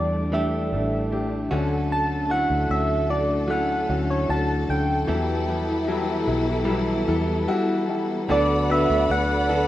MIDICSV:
0, 0, Header, 1, 6, 480
1, 0, Start_track
1, 0, Key_signature, 2, "major"
1, 0, Tempo, 792602
1, 1158, Time_signature, 4, 2, 24, 8
1, 4040, Tempo, 806452
1, 5828, End_track
2, 0, Start_track
2, 0, Title_t, "Soft synth lead"
2, 0, Program_c, 0, 80
2, 0, Note_on_c, 0, 74, 80
2, 204, Note_on_c, 0, 76, 81
2, 213, Note_off_c, 0, 74, 0
2, 921, Note_off_c, 0, 76, 0
2, 1164, Note_on_c, 0, 81, 100
2, 1401, Note_on_c, 0, 78, 104
2, 1410, Note_off_c, 0, 81, 0
2, 1641, Note_on_c, 0, 76, 97
2, 1650, Note_off_c, 0, 78, 0
2, 1879, Note_on_c, 0, 74, 87
2, 1888, Note_off_c, 0, 76, 0
2, 2124, Note_on_c, 0, 78, 98
2, 2133, Note_off_c, 0, 74, 0
2, 2486, Note_on_c, 0, 73, 83
2, 2495, Note_off_c, 0, 78, 0
2, 2605, Note_on_c, 0, 81, 98
2, 2614, Note_off_c, 0, 73, 0
2, 2846, Note_on_c, 0, 79, 91
2, 2855, Note_off_c, 0, 81, 0
2, 4285, Note_off_c, 0, 79, 0
2, 5019, Note_on_c, 0, 74, 106
2, 5256, Note_on_c, 0, 76, 105
2, 5265, Note_off_c, 0, 74, 0
2, 5494, Note_on_c, 0, 78, 111
2, 5503, Note_off_c, 0, 76, 0
2, 5828, Note_off_c, 0, 78, 0
2, 5828, End_track
3, 0, Start_track
3, 0, Title_t, "Grand piano"
3, 0, Program_c, 1, 0
3, 0, Control_c, 1, 64, 127
3, 0, Note_on_c, 1, 45, 49
3, 0, Note_on_c, 1, 57, 65
3, 0, Note_on_c, 1, 62, 58
3, 0, Note_on_c, 1, 67, 63
3, 186, Note_off_c, 1, 57, 0
3, 187, Note_off_c, 1, 62, 0
3, 188, Note_off_c, 1, 67, 0
3, 196, Note_on_c, 1, 57, 73
3, 199, Note_on_c, 1, 62, 62
3, 201, Note_on_c, 1, 69, 76
3, 425, Note_off_c, 1, 57, 0
3, 426, Note_off_c, 1, 62, 0
3, 427, Note_off_c, 1, 69, 0
3, 439, Note_on_c, 1, 57, 74
3, 441, Note_on_c, 1, 62, 65
3, 443, Note_on_c, 1, 69, 73
3, 667, Note_off_c, 1, 57, 0
3, 668, Note_off_c, 1, 62, 0
3, 669, Note_off_c, 1, 69, 0
3, 678, Note_on_c, 1, 57, 77
3, 680, Note_on_c, 1, 62, 79
3, 681, Note_on_c, 1, 67, 91
3, 906, Note_off_c, 1, 57, 0
3, 907, Note_off_c, 1, 62, 0
3, 908, Note_off_c, 1, 67, 0
3, 918, Note_on_c, 1, 61, 82
3, 921, Note_on_c, 1, 50, 61
3, 921, Note_on_c, 1, 62, 77
3, 924, Note_on_c, 1, 66, 79
3, 927, Note_off_c, 1, 45, 0
3, 927, Control_c, 1, 64, 0
3, 1041, Control_c, 1, 64, 127
3, 1372, Note_off_c, 1, 61, 0
3, 1374, Note_off_c, 1, 62, 0
3, 1375, Note_off_c, 1, 66, 0
3, 1396, Note_on_c, 1, 61, 66
3, 1399, Note_on_c, 1, 62, 65
3, 1401, Note_on_c, 1, 64, 76
3, 1613, Note_off_c, 1, 50, 0
3, 1623, Note_off_c, 1, 61, 0
3, 1625, Note_off_c, 1, 62, 0
3, 1626, Note_off_c, 1, 64, 0
3, 1637, Note_on_c, 1, 61, 71
3, 1638, Note_on_c, 1, 62, 73
3, 1639, Note_on_c, 1, 66, 80
3, 1864, Note_off_c, 1, 61, 0
3, 1865, Note_off_c, 1, 62, 0
3, 1865, Note_off_c, 1, 66, 0
3, 1876, Note_on_c, 1, 57, 66
3, 1877, Note_on_c, 1, 62, 68
3, 1877, Note_on_c, 1, 66, 76
3, 2104, Note_off_c, 1, 57, 0
3, 2105, Note_off_c, 1, 62, 0
3, 2105, Note_off_c, 1, 66, 0
3, 2112, Note_on_c, 1, 61, 70
3, 2115, Note_on_c, 1, 62, 71
3, 2117, Note_on_c, 1, 64, 82
3, 2344, Note_off_c, 1, 61, 0
3, 2345, Note_off_c, 1, 62, 0
3, 2346, Note_off_c, 1, 64, 0
3, 2357, Note_on_c, 1, 62, 67
3, 2358, Note_on_c, 1, 61, 66
3, 2360, Note_on_c, 1, 66, 82
3, 2586, Note_off_c, 1, 61, 0
3, 2586, Note_off_c, 1, 62, 0
3, 2587, Note_off_c, 1, 66, 0
3, 2595, Note_on_c, 1, 61, 83
3, 2599, Note_on_c, 1, 62, 86
3, 2601, Note_on_c, 1, 66, 92
3, 2825, Note_off_c, 1, 61, 0
3, 2827, Note_off_c, 1, 62, 0
3, 2828, Note_off_c, 1, 66, 0
3, 2838, Note_on_c, 1, 61, 71
3, 2839, Note_on_c, 1, 62, 56
3, 2842, Note_on_c, 1, 64, 74
3, 3067, Note_off_c, 1, 61, 0
3, 3067, Note_off_c, 1, 62, 0
3, 3069, Note_off_c, 1, 64, 0
3, 3076, Note_on_c, 1, 55, 88
3, 3078, Note_on_c, 1, 64, 80
3, 3079, Note_on_c, 1, 52, 58
3, 3080, Note_on_c, 1, 54, 88
3, 3086, Control_c, 1, 64, 0
3, 3184, Control_c, 1, 64, 127
3, 3305, Note_off_c, 1, 55, 0
3, 3307, Note_off_c, 1, 54, 0
3, 3307, Note_off_c, 1, 64, 0
3, 3314, Note_on_c, 1, 55, 72
3, 3317, Note_on_c, 1, 64, 65
3, 3319, Note_on_c, 1, 54, 74
3, 3545, Note_off_c, 1, 55, 0
3, 3546, Note_off_c, 1, 64, 0
3, 3547, Note_off_c, 1, 54, 0
3, 3558, Note_on_c, 1, 55, 98
3, 3561, Note_on_c, 1, 54, 107
3, 3561, Note_on_c, 1, 64, 94
3, 3776, Note_off_c, 1, 52, 0
3, 3788, Note_off_c, 1, 55, 0
3, 3789, Note_off_c, 1, 54, 0
3, 3789, Note_off_c, 1, 64, 0
3, 3799, Note_on_c, 1, 55, 77
3, 3801, Note_on_c, 1, 64, 67
3, 3802, Note_on_c, 1, 54, 91
3, 4027, Note_off_c, 1, 55, 0
3, 4030, Note_off_c, 1, 64, 0
3, 4031, Note_off_c, 1, 54, 0
3, 4036, Note_on_c, 1, 55, 94
3, 4039, Note_on_c, 1, 64, 91
3, 4040, Note_on_c, 1, 54, 101
3, 4267, Note_off_c, 1, 55, 0
3, 4268, Note_off_c, 1, 64, 0
3, 4269, Note_off_c, 1, 54, 0
3, 4279, Note_on_c, 1, 55, 92
3, 4280, Note_on_c, 1, 64, 78
3, 4283, Note_on_c, 1, 69, 101
3, 4510, Note_off_c, 1, 55, 0
3, 4511, Note_off_c, 1, 64, 0
3, 4512, Note_off_c, 1, 69, 0
3, 4520, Note_on_c, 1, 55, 103
3, 4521, Note_on_c, 1, 64, 105
3, 4523, Note_on_c, 1, 66, 115
3, 4753, Note_off_c, 1, 55, 0
3, 4753, Note_off_c, 1, 64, 0
3, 4754, Note_off_c, 1, 66, 0
3, 4763, Note_on_c, 1, 55, 76
3, 4766, Note_on_c, 1, 64, 73
3, 4768, Note_on_c, 1, 66, 77
3, 4993, Note_off_c, 1, 55, 0
3, 4995, Note_off_c, 1, 64, 0
3, 4996, Note_off_c, 1, 66, 0
3, 5004, Note_on_c, 1, 59, 90
3, 5005, Note_on_c, 1, 66, 86
3, 5006, Note_on_c, 1, 62, 85
3, 5007, Note_on_c, 1, 50, 56
3, 5007, Note_on_c, 1, 69, 92
3, 5015, Control_c, 1, 64, 0
3, 5124, Control_c, 1, 64, 127
3, 5233, Note_off_c, 1, 59, 0
3, 5234, Note_off_c, 1, 62, 0
3, 5234, Note_off_c, 1, 66, 0
3, 5235, Note_off_c, 1, 69, 0
3, 5244, Note_on_c, 1, 59, 94
3, 5245, Note_on_c, 1, 62, 85
3, 5248, Note_on_c, 1, 66, 92
3, 5248, Note_on_c, 1, 71, 102
3, 5472, Note_off_c, 1, 59, 0
3, 5473, Note_off_c, 1, 62, 0
3, 5474, Note_off_c, 1, 66, 0
3, 5474, Note_off_c, 1, 71, 0
3, 5483, Note_on_c, 1, 59, 74
3, 5485, Note_on_c, 1, 62, 60
3, 5485, Note_on_c, 1, 66, 64
3, 5487, Note_on_c, 1, 69, 82
3, 5699, Note_off_c, 1, 50, 0
3, 5709, Note_off_c, 1, 59, 0
3, 5711, Note_off_c, 1, 62, 0
3, 5711, Note_off_c, 1, 66, 0
3, 5712, Note_off_c, 1, 69, 0
3, 5718, Note_on_c, 1, 59, 81
3, 5719, Note_on_c, 1, 62, 67
3, 5722, Note_on_c, 1, 66, 70
3, 5722, Note_on_c, 1, 69, 81
3, 5828, Note_off_c, 1, 59, 0
3, 5828, Note_off_c, 1, 62, 0
3, 5828, Note_off_c, 1, 66, 0
3, 5828, Note_off_c, 1, 69, 0
3, 5828, End_track
4, 0, Start_track
4, 0, Title_t, "String section"
4, 0, Program_c, 2, 48
4, 0, Note_on_c, 2, 55, 64
4, 0, Note_on_c, 2, 57, 52
4, 0, Note_on_c, 2, 62, 63
4, 894, Note_off_c, 2, 57, 0
4, 894, Note_off_c, 2, 62, 0
4, 903, Note_off_c, 2, 55, 0
4, 924, Note_on_c, 2, 50, 62
4, 924, Note_on_c, 2, 69, 79
4, 927, Note_on_c, 2, 57, 62
4, 3060, Note_off_c, 2, 50, 0
4, 3061, Note_off_c, 2, 57, 0
4, 3079, Note_on_c, 2, 59, 67
4, 3080, Note_on_c, 2, 64, 80
4, 3081, Note_on_c, 2, 52, 80
4, 4986, Note_off_c, 2, 69, 0
4, 4989, Note_off_c, 2, 52, 0
4, 4989, Note_off_c, 2, 59, 0
4, 4989, Note_off_c, 2, 64, 0
4, 5011, Note_on_c, 2, 69, 73
4, 5013, Note_on_c, 2, 83, 80
4, 5014, Note_on_c, 2, 74, 71
4, 5015, Note_on_c, 2, 78, 71
4, 5828, Note_off_c, 2, 69, 0
4, 5828, Note_off_c, 2, 74, 0
4, 5828, Note_off_c, 2, 78, 0
4, 5828, Note_off_c, 2, 83, 0
4, 5828, End_track
5, 0, Start_track
5, 0, Title_t, "Clean electric guitar"
5, 0, Program_c, 3, 27
5, 0, Note_on_c, 3, 52, 37
5, 0, Note_on_c, 3, 57, 38
5, 0, Note_on_c, 3, 62, 46
5, 0, Note_on_c, 3, 67, 47
5, 187, Note_off_c, 3, 52, 0
5, 194, Note_on_c, 3, 52, 54
5, 197, Note_off_c, 3, 67, 0
5, 198, Note_off_c, 3, 57, 0
5, 201, Note_on_c, 3, 57, 57
5, 204, Note_off_c, 3, 62, 0
5, 206, Note_on_c, 3, 62, 58
5, 210, Note_on_c, 3, 67, 65
5, 911, Note_off_c, 3, 67, 0
5, 913, Note_on_c, 3, 66, 61
5, 914, Note_off_c, 3, 62, 0
5, 916, Note_off_c, 3, 52, 0
5, 916, Note_on_c, 3, 61, 59
5, 917, Note_off_c, 3, 57, 0
5, 920, Note_on_c, 3, 57, 63
5, 923, Note_on_c, 3, 54, 57
5, 925, Note_on_c, 3, 50, 57
5, 1389, Note_off_c, 3, 66, 0
5, 1391, Note_on_c, 3, 66, 44
5, 1395, Note_off_c, 3, 61, 0
5, 1397, Note_off_c, 3, 57, 0
5, 1400, Note_off_c, 3, 50, 0
5, 1407, Note_on_c, 3, 57, 43
5, 2103, Note_off_c, 3, 54, 0
5, 2106, Note_on_c, 3, 54, 59
5, 2112, Note_off_c, 3, 57, 0
5, 2119, Note_on_c, 3, 57, 65
5, 2131, Note_on_c, 3, 61, 61
5, 3073, Note_on_c, 3, 52, 69
5, 3076, Note_off_c, 3, 54, 0
5, 3078, Note_off_c, 3, 57, 0
5, 3078, Note_on_c, 3, 55, 80
5, 3080, Note_on_c, 3, 59, 75
5, 3081, Note_off_c, 3, 61, 0
5, 3083, Note_on_c, 3, 64, 71
5, 3091, Note_off_c, 3, 66, 0
5, 3315, Note_off_c, 3, 64, 0
5, 3316, Note_off_c, 3, 52, 0
5, 3319, Note_off_c, 3, 55, 0
5, 3320, Note_off_c, 3, 59, 0
5, 3322, Note_on_c, 3, 64, 52
5, 3328, Note_on_c, 3, 59, 44
5, 4028, Note_on_c, 3, 55, 78
5, 4039, Note_off_c, 3, 59, 0
5, 4042, Note_on_c, 3, 59, 65
5, 4043, Note_off_c, 3, 64, 0
5, 4053, Note_on_c, 3, 64, 71
5, 5001, Note_off_c, 3, 55, 0
5, 5003, Note_on_c, 3, 50, 83
5, 5007, Note_off_c, 3, 59, 0
5, 5007, Note_on_c, 3, 54, 70
5, 5010, Note_off_c, 3, 64, 0
5, 5010, Note_on_c, 3, 59, 73
5, 5013, Note_on_c, 3, 66, 82
5, 5015, Note_on_c, 3, 69, 80
5, 5716, Note_off_c, 3, 69, 0
5, 5719, Note_on_c, 3, 69, 54
5, 5721, Note_off_c, 3, 50, 0
5, 5724, Note_off_c, 3, 59, 0
5, 5725, Note_off_c, 3, 66, 0
5, 5728, Note_on_c, 3, 66, 49
5, 5735, Note_on_c, 3, 59, 41
5, 5828, Note_off_c, 3, 54, 0
5, 5828, Note_off_c, 3, 59, 0
5, 5828, Note_off_c, 3, 66, 0
5, 5828, Note_off_c, 3, 69, 0
5, 5828, End_track
6, 0, Start_track
6, 0, Title_t, "Fingered electric bass"
6, 0, Program_c, 4, 33
6, 0, Note_on_c, 4, 40, 87
6, 437, Note_on_c, 4, 33, 83
6, 446, Note_off_c, 4, 40, 0
6, 894, Note_off_c, 4, 33, 0
6, 917, Note_on_c, 4, 38, 90
6, 1491, Note_off_c, 4, 38, 0
6, 1515, Note_on_c, 4, 38, 105
6, 1627, Note_off_c, 4, 38, 0
6, 1634, Note_on_c, 4, 38, 95
6, 2333, Note_off_c, 4, 38, 0
6, 2359, Note_on_c, 4, 38, 90
6, 2582, Note_off_c, 4, 38, 0
6, 2599, Note_on_c, 4, 38, 91
6, 2822, Note_off_c, 4, 38, 0
6, 2841, Note_on_c, 4, 38, 76
6, 3063, Note_off_c, 4, 38, 0
6, 3081, Note_on_c, 4, 40, 86
6, 3777, Note_off_c, 4, 40, 0
6, 3800, Note_on_c, 4, 35, 100
6, 4258, Note_off_c, 4, 35, 0
6, 4283, Note_on_c, 4, 40, 89
6, 4508, Note_off_c, 4, 40, 0
6, 5008, Note_on_c, 4, 38, 100
6, 5343, Note_off_c, 4, 38, 0
6, 5367, Note_on_c, 4, 38, 100
6, 5477, Note_off_c, 4, 38, 0
6, 5485, Note_on_c, 4, 38, 98
6, 5828, Note_off_c, 4, 38, 0
6, 5828, End_track
0, 0, End_of_file